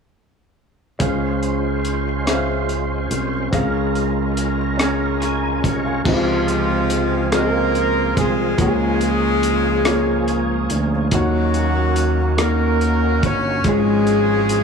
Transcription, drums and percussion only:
1.00 kick medium
1.00 closed hi-hat medium
1.43 closed hi-hat soft
1.85 closed hi-hat soft
2.27 cross-stick medium
2.27 closed hi-hat medium
2.69 closed hi-hat soft
3.11 closed hi-hat medium
3.53 kick loud
3.53 closed hi-hat medium
3.95 closed hi-hat soft
4.37 closed hi-hat medium
4.79 cross-stick medium
4.79 closed hi-hat medium
5.22 cross-stick soft
5.22 closed hi-hat soft
5.64 kick medium
5.64 closed hi-hat soft
6.05 kick medium
6.05 crash medium
6.48 closed hi-hat soft
6.90 closed hi-hat medium
7.32 cross-stick medium
7.32 closed hi-hat medium
7.75 closed hi-hat soft
8.17 kick medium
8.17 closed hi-hat medium
8.58 kick medium
8.58 closed hi-hat medium
9.01 closed hi-hat soft
9.43 closed hi-hat soft
9.85 cross-stick medium
9.85 closed hi-hat medium
10.28 closed hi-hat soft
10.70 closed hi-hat medium
11.11 kick medium
11.11 closed hi-hat medium
11.54 closed hi-hat soft
11.96 closed hi-hat soft
12.38 cross-stick medium
12.38 closed hi-hat medium
12.81 closed hi-hat soft
13.23 kick medium
13.23 closed hi-hat soft
13.64 kick medium
13.64 closed hi-hat medium
14.07 closed hi-hat soft
14.49 closed hi-hat medium

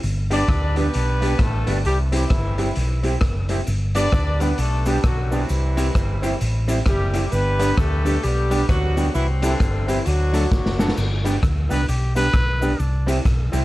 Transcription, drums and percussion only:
0.03 closed hi-hat medium
0.31 closed hi-hat loud
0.48 kick loud
0.48 cross-stick medium
0.48 closed hi-hat medium
0.76 closed hi-hat medium
0.94 closed hi-hat medium
1.22 closed hi-hat medium
1.39 kick loud
1.39 cross-stick loud
1.39 closed hi-hat medium
1.67 closed hi-hat medium
1.85 closed hi-hat medium
2.12 closed hi-hat loud
2.30 kick loud
2.30 cross-stick medium
2.30 closed hi-hat medium
2.58 closed hi-hat medium
2.75 closed hi-hat medium
3.03 closed hi-hat medium
3.21 kick loud
3.21 cross-stick loud
3.21 closed hi-hat medium
3.49 closed hi-hat medium
3.67 closed hi-hat medium
3.67 cabasa medium
3.95 closed hi-hat medium
3.95 cabasa medium
4.12 kick loud
4.12 cross-stick loud
4.12 closed hi-hat medium
4.12 cabasa soft
4.40 closed hi-hat medium
4.40 cabasa medium
4.58 closed hi-hat loud
4.58 cabasa soft
4.86 closed hi-hat medium
4.86 cabasa medium
5.04 kick loud
5.04 cross-stick loud
5.04 closed hi-hat medium
5.04 cabasa soft
5.32 open hi-hat soft
5.32 cabasa medium
5.49 closed hi-hat medium
5.49 cabasa medium
5.77 closed hi-hat loud
5.77 cabasa medium
5.95 kick loud
5.95 cross-stick loud
5.95 closed hi-hat medium
5.95 cabasa soft
6.23 closed hi-hat medium
6.23 cabasa medium
6.41 closed hi-hat loud
6.41 cabasa soft
6.68 closed hi-hat medium
6.68 cabasa medium
6.86 kick loud
6.86 cross-stick loud
6.86 closed hi-hat medium
6.86 cabasa soft
7.14 closed hi-hat medium
7.14 cabasa medium
7.32 closed hi-hat medium
7.32 cabasa medium
7.59 closed hi-hat loud
7.59 cabasa medium
7.77 kick loud
7.77 cross-stick medium
7.77 closed hi-hat medium
7.77 cabasa medium
8.06 closed hi-hat medium
8.06 cabasa medium
8.23 closed hi-hat medium
8.23 cabasa soft
8.51 closed hi-hat medium
8.51 cabasa medium
8.69 kick loud
8.69 cross-stick loud
8.69 closed hi-hat medium
8.69 cabasa soft
8.97 closed hi-hat medium
8.97 cabasa medium
9.15 closed hi-hat medium
9.15 cabasa medium
9.42 closed hi-hat medium
9.42 cabasa medium
9.60 kick loud
9.60 cross-stick loud
9.60 closed hi-hat medium
9.60 cabasa soft
9.88 closed hi-hat medium
9.88 cabasa medium
10.06 closed hi-hat medium
10.06 cabasa medium
10.34 closed hi-hat medium
10.34 cabasa medium
10.52 kick loud
10.52 snare medium
10.52 cabasa soft
10.66 snare medium
10.79 snare medium
10.79 cabasa medium
10.88 snare medium
10.97 crash medium
10.97 cabasa medium
11.25 closed hi-hat medium
11.25 cabasa medium
11.43 kick loud
11.43 cross-stick medium
11.43 closed hi-hat medium
11.43 cabasa soft
11.70 closed hi-hat medium
11.70 cabasa medium
11.88 closed hi-hat medium
11.88 cabasa soft
12.16 closed hi-hat medium
12.16 cabasa medium
12.34 kick loud
12.34 cross-stick loud
12.34 closed hi-hat medium
12.34 cabasa soft
12.62 open hi-hat medium
12.62 cabasa medium
12.80 closed hi-hat medium
12.80 cabasa medium
13.08 closed hi-hat medium
13.08 cabasa medium
13.25 kick loud
13.25 cross-stick medium
13.25 closed hi-hat medium
13.25 cabasa soft
13.53 closed hi-hat medium
13.53 cabasa medium

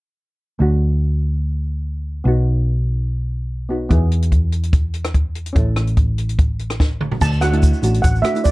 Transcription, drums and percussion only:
3.91 kick medium
3.91 closed hi-hat soft
4.12 closed hi-hat medium
4.22 closed hi-hat medium
4.32 kick medium
4.32 closed hi-hat medium
4.52 closed hi-hat medium
4.63 closed hi-hat soft
4.73 kick loud
4.73 closed hi-hat medium
4.94 closed hi-hat medium
5.05 cross-stick medium
5.05 closed hi-hat medium
5.14 kick medium
5.14 closed hi-hat medium
5.35 closed hi-hat medium
5.46 closed hi-hat medium
5.56 kick medium
5.56 closed hi-hat medium
5.76 cross-stick medium
5.76 closed hi-hat medium
5.87 closed hi-hat medium
5.97 kick medium
5.97 closed hi-hat soft
6.18 closed hi-hat medium
6.29 closed hi-hat medium
6.39 kick medium
6.39 closed hi-hat medium
6.59 closed hi-hat medium
6.70 cross-stick medium
6.70 closed hi-hat soft
6.80 kick medium
6.80 snare soft
7.01 mid tom medium
7.12 floor tom medium
7.21 kick medium
7.21 crash medium
7.21 shaker medium
7.32 shaker soft
7.42 cross-stick medium
7.42 closed hi-hat medium
7.42 shaker medium
7.53 closed hi-hat medium
7.63 kick medium
7.63 closed hi-hat soft
7.63 shaker medium
7.73 shaker soft
7.83 closed hi-hat medium
7.83 shaker medium
7.94 closed hi-hat medium
7.94 shaker soft
8.04 kick medium
8.04 closed hi-hat medium
8.04 shaker medium
8.16 shaker soft
8.24 cross-stick medium
8.24 closed hi-hat medium
8.24 shaker medium
8.35 closed hi-hat medium
8.35 shaker soft
8.45 kick medium
8.45 closed hi-hat medium
8.45 shaker medium

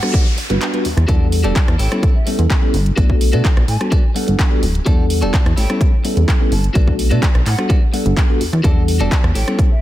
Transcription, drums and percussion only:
0.03 cross-stick medium
0.03 closed hi-hat medium
0.14 kick loud
0.14 closed hi-hat medium
0.26 open hi-hat medium
0.38 open hi-hat loud
0.50 closed hi-hat medium
0.61 clap loud
0.61 closed hi-hat medium
0.74 closed hi-hat soft
0.85 open hi-hat loud
0.97 cross-stick medium
0.97 closed hi-hat medium
1.08 kick loud
1.08 closed hi-hat medium
1.32 open hi-hat loud
1.44 closed hi-hat medium
1.56 kick loud
1.56 clap loud
1.56 closed hi-hat medium
1.68 cross-stick medium
1.68 closed hi-hat soft
1.79 open hi-hat loud
1.92 cross-stick medium
1.92 closed hi-hat medium
2.03 kick loud
2.03 closed hi-hat medium
2.27 open hi-hat loud
2.39 closed hi-hat medium
2.50 kick loud
2.50 clap loud
2.50 closed hi-hat medium
2.74 open hi-hat loud
2.86 closed hi-hat medium
2.97 kick loud
2.97 closed hi-hat medium
3.10 kick medium
3.21 open hi-hat loud
3.33 closed hi-hat medium
3.45 kick loud
3.45 clap loud
3.45 closed hi-hat medium
3.57 cross-stick medium
3.57 closed hi-hat soft
3.68 open hi-hat loud
3.81 cross-stick medium
3.81 closed hi-hat medium
3.92 kick loud
3.92 closed hi-hat medium
4.16 open hi-hat loud
4.28 closed hi-hat medium
4.39 kick loud
4.39 clap loud
4.39 closed hi-hat medium
4.63 open hi-hat loud
4.75 closed hi-hat medium
4.86 kick loud
4.86 closed hi-hat medium
5.10 open hi-hat loud
5.22 closed hi-hat medium
5.33 kick loud
5.33 clap loud
5.33 closed hi-hat medium
5.46 cross-stick medium
5.46 closed hi-hat soft
5.57 open hi-hat loud
5.70 cross-stick medium
5.70 closed hi-hat medium
5.81 kick loud
5.81 closed hi-hat medium
6.05 open hi-hat loud
6.17 closed hi-hat medium
6.28 kick loud
6.28 clap loud
6.28 closed hi-hat medium
6.52 open hi-hat loud
6.64 closed hi-hat medium
6.75 kick loud
6.75 closed hi-hat medium
6.87 kick medium
6.99 open hi-hat loud
7.11 closed hi-hat medium
7.22 kick loud
7.22 clap loud
7.22 closed hi-hat medium
7.35 cross-stick medium
7.35 closed hi-hat soft
7.46 clap medium
7.46 open hi-hat loud
7.58 cross-stick medium
7.58 closed hi-hat medium
7.70 kick loud
7.70 closed hi-hat medium
7.94 open hi-hat loud
8.06 closed hi-hat medium
8.17 kick loud
8.17 clap loud
8.17 closed hi-hat medium
8.41 open hi-hat loud
8.53 cross-stick medium
8.53 closed hi-hat soft
8.64 kick loud
8.64 closed hi-hat medium
8.88 open hi-hat loud
9.01 closed hi-hat medium
9.11 kick loud
9.11 clap loud
9.11 closed hi-hat medium
9.24 cross-stick medium
9.24 closed hi-hat soft
9.35 open hi-hat loud
9.48 cross-stick medium
9.48 closed hi-hat medium
9.59 kick loud
9.59 closed hi-hat medium

